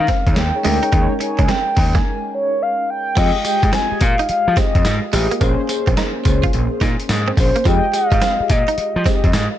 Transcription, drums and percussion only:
0.08 kick loud
0.08 snare medium
0.08 closed hi-hat medium
0.27 kick medium
0.27 closed hi-hat medium
0.36 snare loud
0.36 closed hi-hat medium
0.65 open hi-hat medium
0.83 closed hi-hat soft
0.93 kick loud
0.93 closed hi-hat medium
1.21 closed hi-hat medium
1.39 kick loud
1.39 closed hi-hat medium
1.49 snare loud
1.49 closed hi-hat medium
1.77 kick medium
1.77 open hi-hat medium
1.95 kick medium
1.95 snare medium
1.95 closed hi-hat soft
3.17 kick loud
3.17 closed hi-hat medium
3.17 crash loud
3.17 tambourine medium
3.45 closed hi-hat medium
3.45 tambourine medium
3.63 kick loud
3.63 closed hi-hat medium
3.73 snare loud
3.73 closed hi-hat medium
3.73 tambourine medium
4.01 kick loud
4.01 closed hi-hat medium
4.01 tambourine medium
4.19 closed hi-hat soft
4.29 closed hi-hat medium
4.57 kick loud
4.57 snare medium
4.57 closed hi-hat medium
4.57 tambourine medium
4.75 kick medium
4.75 closed hi-hat medium
4.85 snare loud
4.85 closed hi-hat medium
4.85 tambourine loud
5.13 open hi-hat medium
5.13 tambourine medium
5.31 closed hi-hat medium
5.41 kick loud
5.41 closed hi-hat medium
5.41 tambourine medium
5.69 closed hi-hat medium
5.69 tambourine medium
5.87 kick loud
5.87 closed hi-hat medium
5.97 snare loud
5.97 closed hi-hat medium
5.97 tambourine medium
6.25 kick medium
6.25 closed hi-hat medium
6.25 tambourine medium
6.43 kick loud
6.43 closed hi-hat medium
6.53 closed hi-hat medium
6.81 kick loud
6.81 snare medium
6.81 closed hi-hat medium
6.81 tambourine medium
7.00 closed hi-hat medium
7.09 snare loud
7.09 closed hi-hat medium
7.09 tambourine loud
7.37 kick loud
7.37 open hi-hat medium
7.37 tambourine medium
7.56 closed hi-hat medium
7.65 kick loud
7.65 closed hi-hat medium
7.65 tambourine medium
7.94 closed hi-hat medium
7.94 tambourine medium
8.12 kick loud
8.12 closed hi-hat medium
8.22 snare loud
8.22 closed hi-hat medium
8.22 tambourine medium
8.50 kick medium
8.50 closed hi-hat medium
8.50 tambourine medium
8.68 closed hi-hat medium
8.78 closed hi-hat medium
9.06 kick loud
9.06 snare medium
9.06 closed hi-hat medium
9.06 tambourine medium
9.24 kick medium
9.24 closed hi-hat medium
9.33 snare loud
9.33 closed hi-hat medium
9.33 tambourine loud

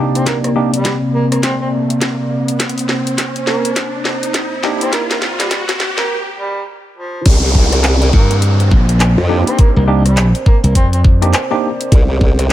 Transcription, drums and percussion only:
0.15 closed hi-hat medium
0.26 kick medium
0.26 snare medium
0.26 closed hi-hat medium
0.44 cross-stick medium
0.44 closed hi-hat soft
0.74 closed hi-hat medium
0.85 kick loud
0.85 snare medium
0.85 closed hi-hat medium
1.32 cross-stick medium
1.32 closed hi-hat medium
1.43 kick medium
1.43 snare medium
1.43 closed hi-hat medium
1.90 closed hi-hat medium
2.01 kick loud
2.01 snare medium
2.01 closed hi-hat medium
2.48 closed hi-hat medium
2.60 kick medium
2.60 snare medium
2.60 closed hi-hat medium
2.69 closed hi-hat medium
2.78 closed hi-hat soft
2.79 closed hi-hat soft
2.89 snare medium
3.07 closed hi-hat medium
3.18 kick medium
3.18 snare medium
3.18 closed hi-hat medium
3.36 closed hi-hat soft
3.47 snare medium
3.65 closed hi-hat medium
3.76 kick loud
3.76 snare medium
3.76 closed hi-hat medium
4.05 snare medium
4.23 closed hi-hat medium
4.34 kick loud
4.34 snare medium
4.34 closed hi-hat medium
4.63 snare medium
4.81 closed hi-hat medium
4.93 kick medium
4.93 snare medium
4.93 closed hi-hat medium
5.11 snare medium
5.11 closed hi-hat soft
5.22 snare medium
5.40 snare medium
5.40 closed hi-hat medium
5.51 kick loud
5.51 snare medium
5.51 closed hi-hat medium
5.69 snare medium
5.69 closed hi-hat soft
5.80 snare loud
5.98 snare medium
7.26 kick loud
7.26 closed hi-hat medium
7.26 crash loud
7.55 kick medium
7.72 cross-stick soft
7.72 closed hi-hat medium
7.84 clap loud
7.84 closed hi-hat medium
8.02 closed hi-hat soft
8.13 kick loud
8.31 closed hi-hat medium
8.42 closed hi-hat medium
8.60 cross-stick soft
8.60 closed hi-hat soft
8.68 kick loud
8.68 cross-stick soft
8.77 cross-stick soft
8.89 closed hi-hat medium
9.00 clap loud
9.00 closed hi-hat medium
9.18 cross-stick soft
9.47 closed hi-hat medium
9.59 kick loud
9.59 closed hi-hat medium
10.06 cross-stick soft
10.06 closed hi-hat medium
10.17 clap loud
10.17 closed hi-hat medium
10.35 closed hi-hat soft
10.46 kick loud
10.64 closed hi-hat medium
10.75 kick medium
10.75 closed hi-hat medium
10.93 closed hi-hat soft
11.04 kick loud
11.22 cross-stick medium
11.22 closed hi-hat medium
11.33 clap loud
11.33 closed hi-hat medium
11.51 cross-stick soft
11.81 closed hi-hat medium
11.92 kick loud
11.92 closed hi-hat medium
12.21 kick medium
12.39 cross-stick soft
12.39 closed hi-hat medium

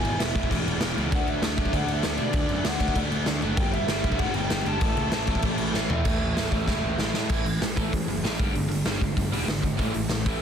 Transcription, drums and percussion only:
0.05 crash medium
0.20 snare loud
0.20 crash medium
0.36 kick medium
0.36 crash medium
0.43 kick medium
0.51 kick medium
0.51 crash medium
0.68 crash medium
0.81 snare loud
0.81 crash medium
0.98 crash medium
1.12 kick loud
1.12 crash medium
1.28 crash medium
1.43 snare loud
1.43 crash medium
1.58 kick medium
1.58 crash medium
1.65 kick medium
1.73 kick medium
1.73 crash medium
1.88 crash medium
2.03 snare loud
2.03 crash medium
2.18 crash medium
2.33 kick loud
2.33 crash medium
2.49 crash medium
2.65 snare loud
2.65 crash medium
2.80 kick medium
2.80 crash medium
2.88 kick medium
2.96 kick medium
2.96 crash medium
3.12 crash medium
3.26 snare loud
3.26 crash medium
3.42 crash medium
3.57 kick loud
3.57 crash medium
3.73 crash medium
3.88 snare loud
3.88 crash medium
4.04 kick medium
4.04 crash medium
4.12 kick medium
4.19 kick medium
4.19 crash medium
4.34 crash medium
4.50 snare loud
4.50 crash medium
4.66 crash medium
4.81 kick loud
4.81 crash medium
4.97 crash medium
5.12 snare loud
5.12 crash medium
5.27 kick medium
5.27 crash medium
5.35 kick medium
5.42 kick loud
5.42 crash medium
5.58 crash medium
5.74 snare medium
5.90 floor tom medium
6.05 kick medium
6.05 crash loud
6.37 snare loud
6.37 open hi-hat medium
6.52 kick medium
6.67 kick medium
6.67 snare medium
6.99 snare medium
7.14 snare medium
7.29 kick loud
7.29 crash loud
7.46 open hi-hat medium
7.62 snare loud
7.62 open hi-hat medium
7.77 kick medium
7.77 open hi-hat medium
7.93 kick medium
7.93 open hi-hat medium
8.10 open hi-hat medium
8.25 snare loud
8.25 open hi-hat medium
8.39 kick loud
8.39 open hi-hat medium
8.55 open hi-hat medium
8.71 open hi-hat medium
8.86 snare loud
8.86 open hi-hat medium
9.01 kick medium
9.01 open hi-hat medium
9.17 kick medium
9.17 open hi-hat medium
9.33 open hi-hat medium
9.48 snare loud
9.48 open hi-hat medium
9.63 kick medium
9.63 open hi-hat medium
9.79 kick medium
9.79 open hi-hat medium
9.94 open hi-hat medium
10.09 snare loud
10.09 open hi-hat medium
10.26 kick medium
10.26 open hi-hat medium

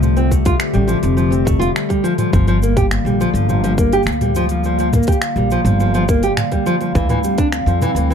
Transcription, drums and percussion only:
0.02 mid tom medium
0.02 cabasa soft
0.17 open hi-hat soft
0.17 cabasa soft
0.32 kick medium
0.32 cabasa medium
0.45 kick loud
0.45 open hi-hat medium
0.45 cabasa soft
0.60 finger snap loud
0.60 cabasa soft
0.74 mid tom medium
0.74 open hi-hat soft
0.74 cabasa soft
0.88 cabasa medium
1.03 open hi-hat medium
1.03 cabasa soft
1.17 cabasa soft
1.32 open hi-hat soft
1.32 cabasa soft
1.47 kick loud
1.47 mid tom medium
1.47 cabasa medium
1.62 open hi-hat medium
1.62 cabasa soft
1.76 finger snap loud
1.76 cabasa soft
1.90 kick medium
1.90 open hi-hat soft
2.05 cabasa medium
2.18 mid tom medium
2.18 open hi-hat medium
2.18 cabasa soft
2.33 kick loud
2.33 cabasa soft
2.48 open hi-hat soft
2.48 cabasa soft
2.63 cabasa medium
2.77 kick loud
2.77 mid tom medium
2.77 open hi-hat medium
2.77 cabasa soft
2.91 finger snap loud
2.91 cabasa soft
3.06 open hi-hat soft
3.06 cabasa soft
3.21 cabasa medium
3.35 open hi-hat medium
3.35 cabasa soft
3.49 mid tom medium
3.49 cabasa soft
3.64 open hi-hat soft
3.64 cabasa soft
3.78 kick loud
3.78 cabasa medium
3.93 open hi-hat medium
3.93 cabasa soft
4.03 finger snap loud
4.03 cabasa soft
4.07 cabasa soft
4.12 cabasa soft
4.21 mid tom medium
4.21 open hi-hat soft
4.26 mid tom medium
4.30 mid tom soft
4.35 mid tom soft
4.35 cabasa medium
4.40 mid tom soft
4.44 mid tom soft
4.49 open hi-hat medium
4.49 cabasa soft
4.64 cabasa soft
4.79 open hi-hat soft
4.79 cabasa soft
4.93 kick medium
4.93 mid tom medium
4.93 cabasa medium
5.03 cabasa medium
5.07 kick loud
5.07 open hi-hat medium
5.07 cabasa soft
5.12 cabasa soft
5.22 finger snap loud
5.22 cabasa soft
5.36 open hi-hat soft
5.36 cabasa soft
5.51 cabasa medium
5.65 mid tom medium
5.65 open hi-hat medium
5.65 cabasa soft
5.80 cabasa soft
5.94 open hi-hat soft
5.94 cabasa soft
6.08 kick loud
6.08 cabasa medium
6.23 open hi-hat medium
6.23 cabasa soft
6.37 finger snap loud
6.37 mid tom medium
6.37 cabasa soft
6.52 kick medium
6.52 open hi-hat soft
6.66 cabasa medium
6.81 open hi-hat medium
6.81 cabasa soft
6.95 kick loud
6.95 cabasa soft
7.09 mid tom medium
7.09 open hi-hat soft
7.24 cabasa medium
7.38 kick loud
7.38 open hi-hat medium
7.38 cabasa soft
7.52 finger snap loud
7.52 cabasa soft
7.67 open hi-hat soft
7.67 cabasa soft
7.81 mid tom medium
7.81 cabasa medium
7.96 open hi-hat medium
7.96 cabasa soft
8.11 cabasa soft

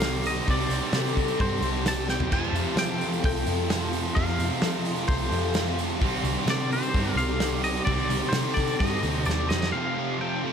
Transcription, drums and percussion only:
0.00 snare loud
0.00 open hi-hat medium
0.00 tambourine medium
0.24 open hi-hat medium
0.24 tambourine medium
0.35 tambourine soft
0.45 kick loud
0.45 open hi-hat medium
0.45 tambourine soft
0.70 open hi-hat medium
0.70 tambourine medium
0.82 tambourine soft
0.93 snare loud
0.93 open hi-hat medium
0.93 tambourine medium
1.17 kick medium
1.17 open hi-hat medium
1.28 tambourine medium
1.40 kick loud
1.40 open hi-hat medium
1.62 open hi-hat medium
1.62 tambourine medium
1.76 tambourine soft
1.86 snare loud
1.86 open hi-hat medium
1.86 tambourine loud
2.08 snare medium
2.08 tambourine medium
2.20 floor tom loud
2.20 tambourine soft
2.32 kick loud
2.32 crash medium
2.32 tambourine soft
2.44 tambourine soft
2.55 open hi-hat medium
2.55 tambourine medium
2.77 snare loud
2.77 open hi-hat medium
2.77 tambourine medium
3.01 open hi-hat medium
3.01 tambourine soft
3.13 tambourine medium
3.24 kick loud
3.24 open hi-hat medium
3.24 tambourine soft
3.46 open hi-hat medium
3.46 tambourine medium
3.70 snare loud
3.70 open hi-hat medium
3.70 tambourine medium
3.81 tambourine soft
3.93 open hi-hat medium
3.93 tambourine medium
4.05 tambourine soft
4.16 kick loud
4.16 open hi-hat medium
4.16 tambourine soft
4.30 tambourine soft
4.39 open hi-hat medium
4.39 tambourine medium
4.62 snare loud
4.62 open hi-hat medium
4.62 tambourine medium
4.85 open hi-hat medium
4.85 tambourine soft
4.96 tambourine medium
5.07 kick loud
5.07 open hi-hat medium
5.07 tambourine soft
5.32 open hi-hat medium
5.54 snare loud
5.54 open hi-hat medium
5.54 tambourine loud
5.66 tambourine soft
5.79 open hi-hat medium
5.79 tambourine medium
5.89 tambourine soft
6.01 kick loud
6.01 open hi-hat medium
6.01 tambourine soft
6.15 tambourine soft
6.25 open hi-hat medium
6.25 tambourine medium
6.47 snare loud
6.47 open hi-hat medium
6.47 tambourine loud
6.72 open hi-hat medium
6.72 tambourine soft
6.83 tambourine medium
6.94 kick loud
6.94 open hi-hat medium
6.94 tambourine soft
7.18 open hi-hat medium
7.18 tambourine medium
7.40 snare loud
7.40 open hi-hat medium
7.40 tambourine loud
7.64 open hi-hat medium
7.64 tambourine medium
7.77 tambourine soft
7.87 kick loud
7.87 open hi-hat medium
8.00 tambourine soft
8.10 open hi-hat medium
8.10 tambourine medium
8.23 tambourine soft
8.32 snare loud
8.32 open hi-hat medium
8.32 tambourine medium
8.57 kick medium
8.57 open hi-hat medium
8.57 tambourine soft
8.67 tambourine medium
8.80 kick loud
8.80 open hi-hat medium
8.91 tambourine soft
9.03 open hi-hat medium
9.03 tambourine medium
9.15 tambourine soft
9.25 snare medium
9.25 tambourine loud
9.50 snare medium
9.50 tambourine medium
9.63 snare medium

